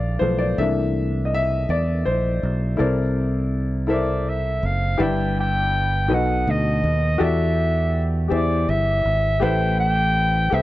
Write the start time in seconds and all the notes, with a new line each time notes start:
Already playing: A#1 F3 A3 B3 D5 F5
0.19 B1 F3 A3 B3 C5
0.39 D5
0.58 C2 E3 A3 A#3 D4 E5
1.25 D#5
1.34 E5
1.69 E2 D5
2.06 A#1 C5
2.43 B1
2.77 C2 C3 E4 A4 A#4 C5 D5
3.87 E4 A4 A#4 C5 E5
3.93 D5
4.29 E5
4.63 F#1 F5
4.98 G1 G2 E4 G4 B4 D5 E5
5.02 G5
5.40 G5
6.08 B1 B2 D#4 F#4 A4 B4 D#5
6.14 F#5
6.47 D2 D#5
6.84 D#2
7.18 E2 E3 F#4 G4 A4 D5 E5
7.23 E5
8.28 E2 E3 G4 G#4 C5 D5 E5
8.34 D5
8.69 G1 E5
9.05 G#1
9.40 A1 A2 G4 A4 B4 C5 E5 G5
9.80 G5
10.50 C2 G4 A4 B4 C5 E5 G5